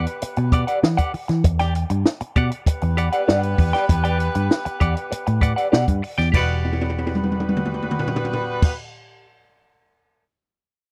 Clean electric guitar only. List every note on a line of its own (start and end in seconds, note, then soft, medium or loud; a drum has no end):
0.07 muted clean electric guitar stroke soft
0.22 muted clean electric guitar stroke soft
0.37 muted clean electric guitar stroke soft
0.52 0.63 G4 medium
0.52 0.64 D5 medium
0.52 0.64 F#5 medium
0.67 0.79 G4 medium
0.67 0.79 D5 medium
0.67 0.78 F#5 medium
0.83 muted clean electric guitar stroke soft
0.97 1.12 G4 medium
0.97 1.12 D5 medium
0.97 1.11 F#5 medium
1.13 muted clean electric guitar stroke soft
1.28 muted clean electric guitar stroke soft
1.44 muted clean electric guitar stroke soft
1.59 1.74 G4 medium
1.59 1.73 D5 medium
1.59 1.73 G5 medium
1.75 muted clean electric guitar stroke soft
1.90 muted clean electric guitar stroke medium
2.21 muted clean electric guitar stroke soft
2.36 2.49 G4 medium
2.36 2.50 D5 medium
2.36 2.50 F#5 loud
2.52 muted clean electric guitar stroke medium
2.67 muted clean electric guitar stroke soft
2.82 muted clean electric guitar stroke soft
2.97 3.08 G4 medium
2.97 3.08 D5 medium
2.97 3.08 F#5 medium
3.12 3.23 G4 medium
3.12 3.23 D5 medium
3.12 3.23 F#5 medium
3.28 3.41 G4 medium
3.28 3.41 D5 medium
3.28 3.42 F#5 medium
3.58 muted clean electric guitar stroke soft
3.73 3.85 G4 soft
3.73 3.84 D5 medium
3.73 3.84 G5 medium
3.89 muted clean electric guitar stroke soft
4.04 4.18 G4 medium
4.04 4.18 D5 medium
4.04 4.17 G5 medium
4.19 muted clean electric guitar stroke soft
4.35 muted clean electric guitar stroke soft
4.65 muted clean electric guitar stroke medium
4.80 4.94 G4 medium
4.80 4.94 D5 medium
4.80 4.94 F#5 medium
4.96 muted clean electric guitar stroke soft
5.11 muted clean electric guitar stroke soft
5.27 muted clean electric guitar stroke medium
5.41 5.52 G4 medium
5.41 5.52 D5 medium
5.41 5.52 F#5 medium
5.56 5.68 G4 medium
5.56 5.67 D5 medium
5.56 5.67 F#5 medium
5.72 5.85 G4 medium
5.72 5.86 D5 medium
5.72 5.86 F#5 medium
6.02 muted clean electric guitar stroke soft
6.18 6.29 G4 medium
6.18 6.28 D5 medium
6.18 6.28 G5 medium
6.32 9.26 G4 medium
6.32 9.26 D5 medium
6.37 9.26 F#5 medium